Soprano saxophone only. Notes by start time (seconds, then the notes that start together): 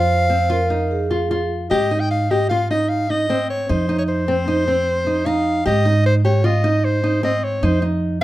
Already playing: F5
1.70 D#5
2.00 G5
2.11 F5
2.31 D#5
2.49 F5
2.70 D#5
2.89 F5
3.10 D#5
3.50 C#5
3.70 C5
3.98 C#5
4.09 C5
5.26 F5
5.67 D#5
6.06 C5
6.25 C#5
6.45 D#5
6.84 C5
7.24 D#5
7.44 C#5
7.64 C5